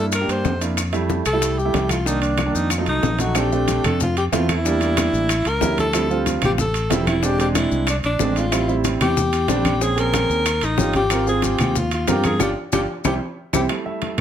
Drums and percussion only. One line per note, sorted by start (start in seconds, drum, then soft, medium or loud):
0.12 high bongo medium
0.12 high conga soft
0.12 high timbale medium
0.12 claves medium
0.12 maracas medium
0.29 high bongo soft
0.29 high conga soft
0.29 high timbale medium
0.29 maracas soft
0.45 high bongo medium
0.45 low bongo medium
0.45 high conga medium
0.45 low timbale medium
0.45 maracas soft
0.61 high bongo soft
0.61 high timbale medium
0.61 maracas medium
0.77 high bongo medium
0.77 high conga soft
0.77 high timbale medium
0.77 claves medium
0.77 maracas medium
0.93 high conga soft
0.93 high timbale medium
0.93 maracas soft
1.09 high bongo medium
1.09 high conga medium
1.09 low timbale medium
1.09 maracas soft
1.25 high conga soft
1.25 high timbale medium
1.25 claves medium
1.25 maracas medium
1.41 high bongo medium
1.41 high conga soft
1.41 high timbale medium
1.41 maracas medium
1.58 high conga soft
1.58 maracas soft
1.74 high bongo medium
1.74 low bongo medium
1.74 high conga medium
1.74 high timbale medium
1.74 low timbale medium
1.74 maracas soft
1.89 high conga medium
1.89 high timbale medium
1.89 claves medium
1.89 maracas medium
2.06 high bongo medium
2.06 high conga soft
2.06 maracas medium
2.22 high conga soft
2.22 high timbale medium
2.22 maracas soft
2.38 high bongo medium
2.38 high conga medium
2.38 high timbale medium
2.38 low timbale medium
2.38 claves medium
2.38 maracas soft
2.55 high bongo soft
2.55 maracas medium
2.70 high bongo medium
2.70 high conga soft
2.70 high timbale medium
2.70 claves medium
2.70 maracas medium
2.86 high bongo soft
2.86 high conga soft
2.86 high timbale medium
2.86 maracas soft
3.03 high bongo medium
3.03 low bongo medium
3.03 high conga medium
3.03 low timbale medium
3.03 maracas soft
3.19 high bongo soft
3.19 high conga medium
3.19 high timbale medium
3.19 maracas medium
3.35 high bongo medium
3.35 high conga soft
3.35 high timbale medium
3.35 claves medium
3.35 maracas medium
3.52 high conga soft
3.52 maracas soft
3.68 high bongo medium
3.68 high conga medium
3.68 high timbale medium
3.68 low timbale medium
3.68 maracas medium
3.84 low conga medium
3.84 high timbale medium
3.84 claves medium
3.84 maracas soft
4.00 high bongo medium
4.00 high conga soft
4.00 low conga medium
4.00 maracas medium
4.17 high conga soft
4.17 high timbale medium
4.17 maracas soft
4.33 high bongo medium
4.33 low bongo medium
4.33 high conga medium
4.33 high timbale medium
4.33 low timbale medium
4.33 maracas medium
4.49 high conga medium
4.49 high timbale medium
4.49 claves medium
4.49 maracas soft
4.65 high bongo medium
4.65 high conga soft
4.65 maracas medium
4.81 high conga soft
4.81 high timbale medium
4.81 maracas soft
4.97 high bongo medium
4.97 high conga medium
4.97 high timbale medium
4.97 low timbale medium
4.97 claves medium
4.97 maracas medium
5.13 high bongo soft
5.13 maracas soft
5.29 high bongo medium
5.29 high conga soft
5.29 high timbale medium
5.29 claves medium
5.29 maracas medium
5.45 high bongo soft
5.45 high conga soft
5.45 high timbale medium
5.45 maracas soft
5.61 high bongo medium
5.61 low bongo medium
5.61 high conga medium
5.61 low timbale medium
5.61 maracas medium
5.78 high conga medium
5.78 high timbale medium
5.78 maracas soft
5.93 high bongo medium
5.93 high conga soft
5.93 high timbale medium
5.93 claves medium
5.93 maracas medium
6.10 high conga soft
6.10 maracas soft
6.26 high bongo medium
6.26 high conga medium
6.26 high timbale medium
6.26 low timbale medium
6.26 maracas medium
6.42 low conga medium
6.42 high timbale medium
6.42 claves medium
6.42 maracas soft
6.58 high bongo medium
6.58 high conga soft
6.58 low conga medium
6.58 maracas medium
6.74 high conga soft
6.74 high timbale medium
6.74 maracas soft
6.90 high bongo medium
6.90 low bongo medium
6.90 high conga medium
6.90 high timbale medium
6.90 low timbale medium
6.90 maracas medium
7.07 high conga medium
7.07 high timbale medium
7.07 claves medium
7.07 maracas soft
7.23 high bongo medium
7.23 high conga soft
7.23 maracas medium
7.39 high bongo soft
7.39 high conga soft
7.39 high timbale medium
7.39 maracas soft
7.55 high bongo medium
7.55 high conga medium
7.55 high timbale loud
7.55 low timbale medium
7.55 claves medium
7.55 maracas medium
7.71 high bongo soft
7.71 maracas soft
7.87 high bongo medium
7.87 high conga soft
7.87 high timbale loud
7.87 claves medium
7.87 maracas medium
8.03 high bongo soft
8.03 high conga soft
8.03 high timbale medium
8.03 maracas soft
8.19 high bongo medium
8.19 low bongo medium
8.19 high conga medium
8.19 low timbale medium
8.19 maracas medium
8.36 high timbale medium
8.36 maracas soft
8.52 high bongo medium
8.52 high conga soft
8.52 high timbale medium
8.52 claves medium
8.52 maracas medium
8.68 high conga soft
8.68 maracas soft
8.84 high bongo medium
8.84 high conga medium
8.84 high timbale medium
8.84 low timbale medium
8.84 maracas medium
9.01 low conga medium
9.01 high timbale medium
9.01 claves medium
9.01 maracas soft
9.16 high bongo medium
9.16 high conga soft
9.16 low conga medium
9.16 maracas medium
9.32 high conga soft
9.32 high timbale medium
9.32 maracas soft
9.48 high bongo medium
9.48 low bongo medium
9.48 high conga medium
9.48 high timbale medium
9.48 low timbale medium
9.48 maracas medium
9.65 high conga medium
9.65 high timbale medium
9.65 claves medium
9.65 maracas soft
9.81 high bongo medium
9.81 high conga soft
9.81 maracas medium
9.97 high bongo soft
9.97 high conga soft
9.97 high timbale medium
9.97 maracas soft
10.14 high bongo medium
10.14 high conga medium
10.14 high timbale medium
10.14 low timbale medium
10.14 claves medium
10.14 maracas medium
10.30 high bongo soft
10.30 maracas soft
10.46 high bongo medium
10.46 high conga soft
10.46 high timbale loud
10.46 claves medium
10.46 maracas medium
10.61 high bongo soft
10.61 high conga soft
10.61 high timbale medium
10.61 maracas soft
10.78 high bongo medium
10.78 low bongo medium
10.78 high conga medium
10.78 low timbale medium
10.78 maracas medium
10.93 high conga medium
10.93 high timbale medium
10.93 maracas soft
11.10 high bongo medium
11.10 high conga soft
11.10 high timbale medium
11.10 claves medium
11.10 maracas medium
11.27 high conga soft
11.27 maracas soft
11.42 high bongo medium
11.42 high conga medium
11.42 high timbale medium
11.42 low timbale medium
11.42 maracas medium
11.59 low conga medium
11.59 high timbale medium
11.59 claves medium
11.59 maracas soft
11.75 high bongo medium
11.75 high conga soft
11.75 low conga medium
11.75 maracas medium
11.91 high conga soft
11.91 high timbale medium
11.91 maracas soft
12.07 high bongo medium
12.07 low bongo medium
12.07 high conga medium
12.07 high timbale medium
12.07 low timbale medium
12.07 maracas medium
12.24 high conga medium
12.24 high timbale medium
12.24 claves medium
12.24 maracas soft
12.40 low bongo loud
12.40 high conga medium
12.40 high timbale medium
12.40 claves loud
12.40 maracas loud
12.72 low bongo loud
12.72 high conga medium
12.72 high timbale loud
12.72 claves medium
12.72 maracas medium
13.05 low bongo loud
13.05 high conga loud
13.05 high timbale loud
13.05 claves medium
13.05 maracas medium
13.53 low bongo medium
13.53 high conga loud
13.53 high timbale medium
13.53 claves medium
13.53 maracas medium
13.69 high bongo medium
13.69 high conga soft
13.69 high timbale medium
13.69 claves medium
13.86 high conga soft
14.02 high bongo medium
14.02 high conga medium
14.02 high timbale medium
14.02 low timbale medium
14.18 low conga medium